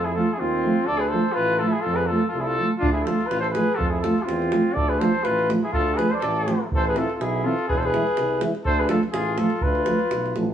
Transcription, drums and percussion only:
2.82 davul low medium
3.07 davul high medium
3.21 davul high soft
3.31 davul high medium
3.44 davul high soft
3.55 davul high medium
3.80 davul low medium
4.04 davul high medium
4.18 davul high soft
4.29 davul high medium
4.42 davul high soft
4.52 davul high medium
4.77 davul low medium
5.01 davul high medium
5.15 davul high soft
5.25 davul high medium
5.39 davul high soft
5.50 davul high medium
5.73 davul low medium
5.88 davul high soft
5.99 davul high medium
6.22 davul high medium
6.37 davul high soft
6.48 davul high medium
6.72 davul low medium
6.85 davul high soft
6.96 davul high medium
7.10 davul high soft
7.21 davul high medium
7.58 davul high soft
7.69 davul low medium
7.83 davul high soft
7.94 davul high medium
8.07 davul high soft
8.17 davul high medium
8.41 davul high medium
8.55 davul high soft
8.65 davul low medium
8.89 davul high medium
9.03 davul high soft
9.14 davul high medium
9.38 davul high medium
9.50 davul high soft
9.61 davul low medium
9.75 davul high soft
9.86 davul high medium
9.99 davul high soft
10.11 davul high medium
10.26 davul high soft
10.36 davul high medium

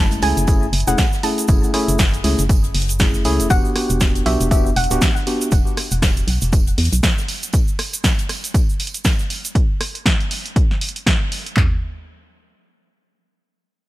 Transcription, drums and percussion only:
0.11 closed hi-hat soft
0.11 cabasa soft
0.22 cross-stick medium
0.22 open hi-hat loud
0.22 tambourine medium
0.37 closed hi-hat medium
0.37 cabasa medium
0.47 kick loud
0.47 closed hi-hat medium
0.47 tambourine medium
0.47 cabasa medium
0.62 cabasa soft
0.73 open hi-hat loud
0.73 tambourine medium
0.80 closed hi-hat medium
0.88 closed hi-hat medium
0.88 cabasa medium
0.98 kick loud
0.98 snare loud
0.98 closed hi-hat medium
0.98 tambourine medium
0.98 cabasa medium
1.13 snare soft
1.13 cabasa soft
1.23 open hi-hat medium
1.23 tambourine medium
1.38 closed hi-hat medium
1.38 cabasa medium
1.48 kick loud
1.48 closed hi-hat medium
1.48 tambourine medium
1.48 cabasa medium
1.63 cabasa soft
1.74 cross-stick medium
1.74 open hi-hat loud
1.74 tambourine medium
1.88 closed hi-hat soft
1.88 cabasa medium
1.99 kick loud
1.99 snare loud
1.99 closed hi-hat medium
1.99 tambourine medium
1.99 cabasa medium
2.14 closed hi-hat soft
2.14 cabasa soft
2.24 open hi-hat loud
2.24 tambourine medium
2.39 closed hi-hat medium
2.39 cabasa medium
2.49 kick loud
2.49 closed hi-hat medium
2.49 tambourine medium
2.49 cabasa medium
2.64 closed hi-hat soft
2.64 cabasa soft
2.74 open hi-hat loud
2.74 open hi-hat medium
2.82 closed hi-hat medium
2.89 closed hi-hat soft
2.89 closed hi-hat medium
2.89 cabasa medium
2.99 kick loud
2.99 snare loud
2.99 closed hi-hat medium
2.99 tambourine medium
2.99 cabasa medium
3.14 snare soft
3.14 cabasa soft
3.24 open hi-hat medium
3.24 tambourine medium
3.40 closed hi-hat medium
3.40 cabasa medium
3.50 kick loud
3.50 closed hi-hat medium
3.50 tambourine medium
3.50 cabasa medium
3.65 cabasa soft
3.76 cross-stick medium
3.76 open hi-hat loud
3.76 tambourine medium
3.90 closed hi-hat soft
3.90 cabasa medium
4.00 kick loud
4.00 snare loud
4.00 closed hi-hat medium
4.00 tambourine medium
4.00 cabasa medium
4.15 closed hi-hat soft
4.15 closed hi-hat medium
4.15 cabasa soft
4.26 cross-stick medium
4.26 open hi-hat medium
4.26 tambourine medium
4.41 closed hi-hat medium
4.41 cabasa medium
4.51 kick loud
4.51 closed hi-hat medium
4.51 tambourine medium
4.51 cabasa medium
4.66 cabasa soft
4.76 open hi-hat loud
4.76 tambourine medium
4.84 closed hi-hat medium
4.91 closed hi-hat medium
4.91 cabasa medium
5.01 kick loud
5.01 snare loud
5.01 closed hi-hat medium
5.01 tambourine medium
5.01 cabasa medium
5.16 snare soft
5.16 cabasa soft
5.27 open hi-hat medium
5.27 tambourine medium
5.41 closed hi-hat soft
5.41 cabasa medium
5.51 kick loud
5.51 closed hi-hat medium
5.51 tambourine medium
5.51 cabasa medium
5.67 cabasa soft
5.77 cross-stick medium
5.77 open hi-hat loud
5.77 tambourine medium
5.91 closed hi-hat medium
5.91 cabasa medium
6.02 kick loud
6.02 snare loud
6.02 closed hi-hat medium
6.02 tambourine medium
6.02 cabasa medium
6.17 closed hi-hat soft
6.17 cabasa soft
6.28 open hi-hat medium
6.28 tambourine medium
6.41 closed hi-hat medium
6.41 cabasa medium
6.53 kick loud
6.53 closed hi-hat medium
6.53 tambourine medium
6.53 cabasa medium
6.67 closed hi-hat soft
6.67 cabasa soft
6.78 open hi-hat medium
6.78 open hi-hat loud
6.85 closed hi-hat medium
6.93 closed hi-hat soft
6.93 closed hi-hat medium
6.93 cabasa medium
7.03 kick loud
7.03 snare loud
7.03 closed hi-hat medium
7.03 tambourine medium
7.03 cabasa medium
7.18 snare soft
7.18 cabasa soft
7.28 open hi-hat medium
7.28 tambourine medium
7.43 closed hi-hat medium
7.43 cabasa medium
7.53 kick loud
7.53 closed hi-hat medium
7.53 tambourine medium
7.53 cabasa medium
7.68 cabasa soft
7.79 cross-stick medium
7.79 open hi-hat loud
7.79 tambourine medium
7.93 closed hi-hat medium
7.93 cabasa medium
8.04 kick loud
8.04 snare loud
8.04 closed hi-hat medium
8.04 tambourine loud
8.04 cabasa medium
8.19 closed hi-hat soft
8.19 closed hi-hat medium
8.19 cabasa soft
8.29 cross-stick medium
8.29 open hi-hat medium
8.29 tambourine medium
8.44 closed hi-hat medium
8.44 cabasa medium
8.54 kick loud
8.54 closed hi-hat medium
8.54 tambourine medium
8.54 cabasa medium
8.69 cabasa soft
8.80 open hi-hat loud
8.80 tambourine medium
8.87 closed hi-hat medium
8.94 closed hi-hat medium
8.94 cabasa medium
9.04 kick loud
9.04 snare loud
9.04 closed hi-hat medium
9.04 tambourine loud
9.04 cabasa medium
9.19 snare soft
9.19 cabasa soft
9.30 open hi-hat medium
9.30 tambourine medium
9.45 closed hi-hat medium
9.45 cabasa medium
9.55 kick loud
9.55 closed hi-hat medium
9.81 cross-stick medium
9.81 open hi-hat loud
9.95 closed hi-hat medium
10.06 kick loud
10.06 snare loud
10.06 closed hi-hat medium
10.20 closed hi-hat soft
10.31 open hi-hat loud
10.46 closed hi-hat medium
10.56 kick loud
10.56 closed hi-hat medium
10.71 snare soft
10.81 open hi-hat loud
10.89 closed hi-hat medium
10.96 closed hi-hat medium
11.06 kick loud
11.06 cross-stick medium
11.06 snare loud
11.06 closed hi-hat medium
11.32 open hi-hat medium
11.46 closed hi-hat medium
11.57 kick loud
11.57 clap medium
11.57 floor tom loud

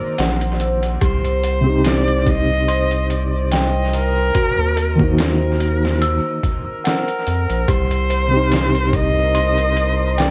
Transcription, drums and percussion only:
0.18 snare loud
0.18 closed hi-hat medium
0.41 closed hi-hat soft
0.60 closed hi-hat medium
0.83 closed hi-hat soft
1.01 kick loud
1.01 closed hi-hat medium
1.25 closed hi-hat soft
1.43 closed hi-hat medium
1.84 snare loud
1.84 closed hi-hat medium
2.08 closed hi-hat soft
2.26 kick medium
2.26 closed hi-hat medium
2.68 closed hi-hat medium
2.91 closed hi-hat soft
3.10 closed hi-hat medium
3.51 snare loud
3.51 closed hi-hat medium
3.93 closed hi-hat medium
4.35 kick loud
4.35 closed hi-hat medium
4.77 closed hi-hat medium
4.99 kick loud
5.18 snare loud
5.18 closed hi-hat medium
5.60 closed hi-hat medium
5.85 snare soft
6.02 closed hi-hat medium
6.43 kick medium
6.43 closed hi-hat medium
6.85 snare loud
6.85 closed hi-hat medium
7.08 closed hi-hat soft
7.27 closed hi-hat medium
7.50 closed hi-hat soft
7.68 kick loud
7.68 closed hi-hat medium
7.91 closed hi-hat soft
8.10 closed hi-hat medium
8.52 snare loud
8.52 closed hi-hat medium
8.75 closed hi-hat soft
8.93 kick loud
8.93 closed hi-hat medium
9.35 closed hi-hat medium
9.58 closed hi-hat soft
9.77 closed hi-hat medium
10.18 snare loud
10.18 closed hi-hat medium

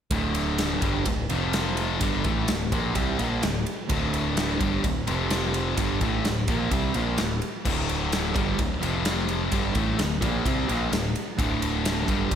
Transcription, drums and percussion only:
0.11 kick medium
0.11 ride medium
0.35 ride medium
0.58 snare loud
0.58 ride medium
0.82 kick loud
0.82 ride medium
1.05 kick loud
1.05 ride loud
1.30 ride medium
1.53 snare loud
1.53 ride medium
1.77 ride medium
2.01 kick loud
2.01 ride loud
2.24 kick loud
2.24 ride medium
2.48 snare loud
2.48 ride medium
2.72 kick loud
2.72 ride medium
2.95 kick loud
2.95 ride medium
3.19 ride medium
3.43 snare loud
3.43 ride medium
3.66 ride medium
3.89 kick medium
3.89 ride medium
4.14 ride medium
4.37 snare loud
4.37 ride medium
4.61 kick loud
4.61 ride medium
4.84 kick medium
4.84 ride medium
5.07 ride medium
5.30 snare loud
5.30 ride medium
5.54 ride medium
5.77 kick loud
5.77 ride loud
6.01 kick loud
6.01 ride medium
6.25 snare loud
6.25 ride medium
6.48 kick loud
6.48 ride medium
6.71 kick loud
6.71 ride medium
6.94 ride medium
7.18 snare loud
7.18 ride medium
7.42 ride medium
7.65 kick loud
7.65 crash loud
7.89 ride medium
8.12 snare loud
8.12 ride medium
8.36 kick loud
8.36 ride medium
8.59 kick medium
8.59 ride medium
8.83 ride medium
9.05 snare loud
9.05 ride loud
9.29 ride medium
9.52 kick loud
9.52 ride medium
9.75 kick loud
9.75 ride medium
9.99 snare loud
9.99 ride loud
10.22 kick loud
10.22 ride medium
10.46 kick loud
10.46 ride medium
10.69 ride medium
10.93 snare loud
10.93 ride medium
11.16 ride medium
11.39 kick medium
11.39 ride medium
11.62 ride medium
11.85 snare loud
11.85 ride loud
12.08 kick loud
12.08 ride medium
12.31 kick medium
12.31 ride medium

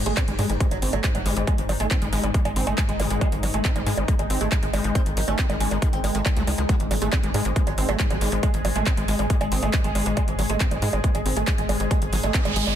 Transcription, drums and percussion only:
0.06 closed hi-hat medium
0.17 kick loud
0.17 clap loud
0.17 closed hi-hat medium
0.17 high bongo medium
0.28 closed hi-hat medium
0.39 open hi-hat loud
0.39 high bongo soft
0.50 closed hi-hat soft
0.60 kick loud
0.60 closed hi-hat medium
0.71 closed hi-hat medium
0.71 high bongo soft
0.82 open hi-hat loud
0.93 closed hi-hat medium
0.93 high bongo medium
1.04 kick loud
1.04 clap loud
1.04 closed hi-hat medium
1.15 closed hi-hat medium
1.15 high bongo soft
1.26 open hi-hat loud
1.37 closed hi-hat medium
1.47 kick loud
1.47 closed hi-hat medium
1.47 high bongo soft
1.58 closed hi-hat medium
1.69 open hi-hat loud
1.69 high bongo medium
1.80 closed hi-hat medium
1.91 kick loud
1.91 clap loud
1.91 closed hi-hat medium
1.91 high bongo soft
2.02 closed hi-hat medium
2.13 open hi-hat loud
2.24 closed hi-hat medium
2.24 high bongo soft
2.34 kick loud
2.34 closed hi-hat medium
2.45 closed hi-hat medium
2.45 high bongo medium
2.56 open hi-hat loud
2.67 closed hi-hat medium
2.67 high bongo soft
2.78 kick loud
2.78 clap loud
2.78 closed hi-hat medium
2.89 closed hi-hat medium
3.00 open hi-hat loud
3.00 high bongo soft
3.10 closed hi-hat medium
3.21 kick loud
3.21 closed hi-hat medium
3.21 high bongo medium
3.32 closed hi-hat medium
3.43 open hi-hat loud
3.43 high bongo soft
3.54 closed hi-hat medium
3.65 kick loud
3.65 clap loud
3.65 closed hi-hat medium
3.76 closed hi-hat medium
3.76 high bongo soft
3.87 open hi-hat loud
3.97 closed hi-hat soft
3.97 high bongo medium
4.08 kick loud
4.08 closed hi-hat medium
4.19 closed hi-hat medium
4.19 high bongo soft
4.30 open hi-hat loud
4.41 closed hi-hat medium
4.52 kick loud
4.52 clap loud
4.52 closed hi-hat medium
4.52 high bongo soft
4.63 closed hi-hat medium
4.74 open hi-hat loud
4.74 high bongo medium
4.84 closed hi-hat medium
4.95 kick loud
4.95 closed hi-hat medium
4.95 high bongo soft
5.06 closed hi-hat medium
5.17 open hi-hat loud
5.28 closed hi-hat soft
5.28 high bongo soft
5.39 kick loud
5.39 clap loud
5.39 closed hi-hat medium
5.50 closed hi-hat medium
5.50 high bongo medium
5.60 open hi-hat loud
5.71 closed hi-hat soft
5.71 high bongo soft
5.82 kick loud
5.82 closed hi-hat medium
5.93 closed hi-hat soft
6.04 open hi-hat loud
6.04 high bongo soft
6.15 closed hi-hat soft
6.26 kick loud
6.26 clap loud
6.26 closed hi-hat medium
6.26 high bongo medium
6.37 closed hi-hat medium
6.47 open hi-hat loud
6.47 high bongo soft
6.58 closed hi-hat soft
6.69 kick loud
6.69 closed hi-hat medium
6.80 closed hi-hat medium
6.91 open hi-hat loud
6.91 high bongo soft
7.02 closed hi-hat soft
7.13 kick loud
7.13 clap loud
7.13 closed hi-hat medium
7.13 high bongo medium
7.23 closed hi-hat medium
7.34 open hi-hat loud
7.34 high bongo soft
7.45 closed hi-hat soft
7.56 kick loud
7.56 closed hi-hat medium
7.67 closed hi-hat medium
7.67 high bongo soft
7.78 open hi-hat loud
7.89 closed hi-hat soft
7.89 high bongo medium
8.00 kick loud
8.00 clap loud
8.00 closed hi-hat medium
8.10 closed hi-hat medium
8.10 high bongo soft
8.21 open hi-hat loud
8.32 closed hi-hat soft
8.43 kick loud
8.43 closed hi-hat medium
8.43 high bongo soft
8.54 closed hi-hat medium
8.65 open hi-hat loud
8.65 high bongo medium
8.76 closed hi-hat medium
8.86 kick loud
8.86 clap loud
8.86 closed hi-hat medium
8.86 high bongo soft
8.97 closed hi-hat medium
9.08 open hi-hat loud
9.19 closed hi-hat soft
9.19 high bongo soft
9.30 kick loud
9.30 closed hi-hat medium
9.41 closed hi-hat medium
9.41 high bongo medium
9.52 open hi-hat loud
9.63 closed hi-hat medium
9.63 high bongo soft
9.73 kick loud
9.73 clap loud
9.73 closed hi-hat medium
9.84 closed hi-hat medium
9.95 open hi-hat loud
9.95 high bongo soft
10.06 closed hi-hat medium
10.17 kick loud
10.17 closed hi-hat medium
10.17 high bongo medium
10.28 closed hi-hat medium
10.39 open hi-hat loud
10.39 high bongo soft
10.50 closed hi-hat medium
10.60 kick loud
10.60 clap loud
10.60 closed hi-hat medium
10.71 closed hi-hat medium
10.71 high bongo soft
10.82 open hi-hat loud
10.93 closed hi-hat medium
10.93 high bongo medium
11.04 kick loud
11.04 closed hi-hat medium
11.15 closed hi-hat medium
11.15 high bongo soft
11.26 open hi-hat loud
11.37 closed hi-hat medium
11.47 kick loud
11.47 clap loud
11.47 closed hi-hat medium
11.47 high bongo soft
11.58 closed hi-hat medium
11.69 open hi-hat loud
11.69 high bongo medium
11.80 closed hi-hat medium
11.91 kick loud
11.91 closed hi-hat medium
11.91 high bongo soft
12.02 closed hi-hat medium
12.13 open hi-hat loud
12.23 closed hi-hat medium
12.23 high bongo soft
12.34 kick loud
12.34 clap loud
12.34 closed hi-hat medium
12.45 closed hi-hat medium
12.45 high bongo medium
12.56 open hi-hat loud
12.67 open hi-hat medium
12.67 high bongo soft

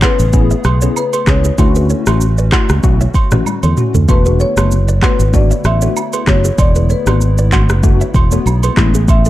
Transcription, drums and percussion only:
0.02 kick loud
0.02 cross-stick medium
0.02 clap loud
0.02 high agogo medium
0.02 shaker medium
0.19 shaker medium
0.33 kick loud
0.33 shaker medium
0.51 shaker medium
0.64 cross-stick medium
0.64 high agogo medium
0.64 shaker medium
0.82 shaker loud
0.96 low woodblock medium
0.96 shaker medium
1.13 high agogo medium
1.13 shaker medium
1.27 kick loud
1.27 cross-stick loud
1.27 clap loud
1.27 shaker medium
1.44 shaker loud
1.58 kick loud
1.58 high agogo medium
1.58 shaker medium
1.75 shaker medium
1.90 shaker soft
2.07 cross-stick loud
2.07 high agogo medium
2.07 shaker medium
2.21 shaker medium
2.38 shaker medium
2.52 kick loud
2.52 cross-stick loud
2.52 clap loud
2.52 high agogo medium
2.52 shaker medium
2.69 cross-stick loud
2.69 shaker medium
2.83 kick loud
2.83 shaker medium
3.01 shaker medium
3.14 kick medium
3.14 high agogo medium
3.14 shaker soft
3.31 cross-stick loud
3.31 mid tom loud
3.31 shaker loud
3.46 high tom medium
3.46 low woodblock medium
3.46 shaker medium
3.63 mid tom medium
3.63 high agogo medium
3.63 shaker medium
3.77 mid tom medium
3.77 shaker medium
3.95 floor tom loud
3.95 shaker loud
4.09 kick loud
4.09 high agogo medium
4.09 shaker medium
4.26 shaker medium
4.40 shaker soft
4.57 cross-stick loud
4.57 high agogo medium
4.57 shaker medium
4.71 shaker medium
4.88 shaker medium
5.02 kick loud
5.02 cross-stick medium
5.02 clap medium
5.02 high agogo medium
5.02 shaker medium
5.20 shaker medium
5.34 kick loud
5.34 shaker medium
5.51 shaker medium
5.64 cross-stick medium
5.64 high agogo medium
5.64 shaker medium
5.82 shaker loud
5.97 low woodblock medium
5.97 shaker medium
6.13 high agogo medium
6.13 shaker medium
6.27 kick loud
6.27 cross-stick loud
6.27 clap medium
6.27 shaker medium
6.45 shaker loud
6.58 kick loud
6.58 high agogo medium
6.58 shaker medium
6.75 shaker medium
6.90 shaker soft
7.07 cross-stick loud
7.07 high agogo medium
7.07 shaker medium
7.21 shaker medium
7.38 shaker medium
7.52 kick loud
7.52 clap loud
7.52 high agogo medium
7.52 shaker medium
7.69 cross-stick loud
7.69 shaker medium
7.83 kick loud
7.83 shaker medium
8.01 shaker medium
8.14 kick medium
8.14 high agogo medium
8.14 shaker medium
8.32 shaker loud
8.47 low woodblock medium
8.47 shaker medium
8.63 high agogo medium
8.63 shaker medium
8.77 kick loud
8.77 cross-stick loud
8.77 clap loud
8.77 shaker medium
8.94 shaker loud
9.08 kick loud
9.08 high agogo medium
9.08 shaker medium
9.25 shaker medium

